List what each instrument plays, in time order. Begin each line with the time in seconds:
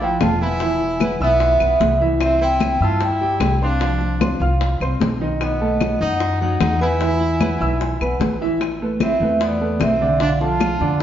Already playing: upright bass A1
0.00 grand piano F3 F4 F5, trumpet E4, vibraphone G5, high conga
0.21 upright bass E1, trumpet F4, vibraphone A5, high bongo, low bongo, high conga, claves
0.41 grand piano B3 B4 B5, trumpet E4, vibraphone G#5, high conga
0.60 grand piano E3 E4 E5, high bongo, high conga
0.80 high bongo, high conga
1.00 grand piano B3 B4 B5, high bongo, high conga, claves
1.20 upright bass B1, trumpet B3, grand piano E4 E5 E6, vibraphone E5, high bongo
1.40 high bongo, high conga
1.60 upright bass B1, grand piano B3 B4 B5, high bongo, high conga, claves
1.80 upright bass C2, high bongo, low bongo, high conga
2.01 grand piano E3 E4 E5, high conga
2.21 trumpet C4, vibraphone E5, high bongo, high conga, claves
2.41 grand piano C4 C5 C6, trumpet E4, vibraphone G5, high conga
2.60 high bongo, high conga, claves
2.80 upright bass G2, grand piano E4 E5 E6, trumpet F4, vibraphone A5, high conga
3.01 trumpet E4, vibraphone G5, high bongo, high conga
3.21 grand piano G3 G4 G5, high conga
3.40 upright bass C2, high bongo, low bongo, high conga, claves
3.62 grand piano C4 C5 C6, trumpet D4, vibraphone F5, high conga
3.81 grand piano F3 F4 F5, high bongo, high conga
4.01 high bongo, high conga
4.21 grand piano C4 C5 C6, high bongo, high conga, claves
4.40 upright bass C2, grand piano F4 F5 F6, high bongo
4.61 high bongo, high conga
4.80 upright bass C2, grand piano C4 C5 C6, high bongo, high conga, claves
5.00 upright bass B1, high bongo, low bongo, high conga
5.21 grand piano D#3 D#4 D#5, high conga
5.41 trumpet B3, vibraphone D#5, high bongo, high conga, claves
5.61 grand piano A3 A4 A5, high conga
5.81 high bongo, high conga, claves
6.01 upright bass F#2, grand piano D#4 D#5 D#6, trumpet D#4, vibraphone F#5, high conga
6.20 high bongo, high conga
6.41 grand piano F#3 F#4 F#5, trumpet D#4, vibraphone F#5, high conga
6.60 upright bass E2, trumpet D#4, vibraphone F#5, high bongo, low bongo, high conga, claves
6.81 grand piano B3 B4 B5, trumpet E4, vibraphone G#5, high conga
7.01 grand piano E3 E4 E5, high bongo, high conga
7.21 high bongo, high conga
7.41 grand piano B3 B4 B5, high bongo, high conga, claves
7.60 upright bass B1, grand piano E4 E5 E6, high bongo
7.81 high bongo, high conga
8.01 upright bass B1, grand piano B3 B4 B5, high bongo, high conga, claves
8.20 upright bass A1, high bongo, low bongo, high conga
8.41 grand piano E3 E4 E5, high conga
8.61 high bongo, high conga, claves
8.81 grand piano A3 A4 B4, high conga
9.00 grand piano E3 E4 E5, trumpet C4, vibraphone E5, high bongo, high conga, claves
9.20 upright bass E2, grand piano A3 A4 B4, high conga
9.40 trumpet B3, vibraphone D5, high bongo, high conga
9.60 grand piano A3 A4 B4, high conga
9.80 upright bass B1, trumpet C4, vibraphone E5, high bongo, low bongo, high conga, claves
10.01 grand piano D3 D4 D5, high conga
10.20 grand piano D3 D4 D5, trumpet D4, vibraphone F5, high bongo, high conga
10.40 grand piano F3 F4 A4, trumpet F4, vibraphone A5, high bongo, high conga
10.60 high bongo, high conga, claves
10.80 upright bass F2, grand piano D3 D4 D5, high bongo